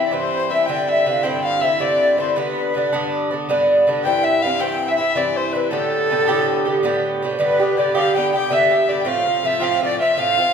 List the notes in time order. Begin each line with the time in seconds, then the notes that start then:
Already playing: E3 C4 E4 E5
0.06 D5
0.11 G2 E3 C4 E4 C5
0.49 G2 E3 C4 E4 E5
0.66 G2 D3 C4 E4 G5
0.88 E5
1.06 G2 D3 C4 E4 F5
1.23 G2 D3 C4 E4 G5
1.44 F5
1.61 D3 C4 E4 E5
1.79 G2 D3 C4 E4 D5
2.17 G2 D3 C4 E4 C5
2.36 G2 D3 B3 D4 B4
2.74 G2 D3 B3 D4
2.93 G2 D3 B3 D4
3.31 D3 B3 D4
3.49 G2 D3 B3 D4
3.87 G2 D3 B3 D4
4.03 G2 E3 C4 G5
4.08 E4
4.23 E5
4.42 G2 E3 C4 F5
4.46 E4
4.59 G2 E3 C4 E4 G5
4.88 E5
4.96 E4 E5
5.00 E3 C4
5.12 G2 E3 C4 D5 E5
5.17 E4 D5
5.36 C5
5.52 G2 E3 C4 E4 B4
5.71 A2 D3 B3 G4 A4
6.10 A2 D3 B3 G4
6.28 A2 D3 B3 G4
6.65 D3 B3 G4
6.83 A2 D3 B3 G4
7.22 A2 D3 B3 G4
7.32 C5
7.38 G2 D3 B3 G4 B4
7.60 D3 B3 G4
7.77 G2 D3 B3 G4 D5
7.95 G2 D3 B3 G4 F5
8.15 G2 D3 B3 G4 G5
8.33 D3 B3 G4 G5
8.50 G2 D3 B3 G4 E5
8.71 D3 B3 G4
8.88 G2 D3 B3 G4 D5
9.01 A2 G5
9.06 F3 C4 F4 F5
9.26 F3 C4 F4
9.43 A2 F3 C4 F4 E5
9.60 A2 F3 C4 F4 F5
9.81 A2 F3 C4 F4 D5
9.99 F3 C4 F4 E5
10.17 A2 F3 C4 F4 F5
10.38 F3 C4 F4